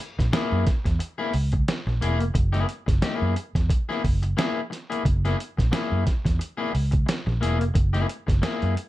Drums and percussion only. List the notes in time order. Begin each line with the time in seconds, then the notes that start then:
0.00 closed hi-hat
0.19 kick, snare, closed hi-hat
0.33 snare, closed hi-hat
0.67 kick, snare, closed hi-hat
0.85 kick, snare, closed hi-hat
1.00 closed hi-hat
1.34 open hi-hat
1.52 kick, closed hi-hat
1.68 snare, closed hi-hat
1.87 snare
2.02 closed hi-hat
2.20 closed hi-hat
2.35 kick, closed hi-hat
2.54 snare, closed hi-hat
2.69 closed hi-hat
2.88 kick, snare, closed hi-hat
3.02 snare, closed hi-hat
3.36 closed hi-hat
3.55 kick, snare, closed hi-hat
3.70 kick, closed hi-hat
3.90 snare
4.04 kick, open hi-hat
4.23 closed hi-hat
4.38 snare, closed hi-hat
4.72 snare, closed hi-hat
4.92 closed hi-hat
5.05 kick, closed hi-hat
5.25 snare, closed hi-hat
5.40 closed hi-hat
5.58 kick, snare, closed hi-hat
5.73 snare, closed hi-hat
6.07 kick, snare, closed hi-hat
6.25 kick, snare, closed hi-hat
6.41 closed hi-hat
6.75 open hi-hat
6.92 kick, closed hi-hat
7.09 snare, closed hi-hat
7.27 snare
7.43 closed hi-hat
7.61 closed hi-hat
7.75 kick, closed hi-hat
7.94 snare, closed hi-hat
8.09 closed hi-hat
8.28 kick, snare, closed hi-hat
8.43 snare, closed hi-hat
8.62 closed hi-hat
8.77 closed hi-hat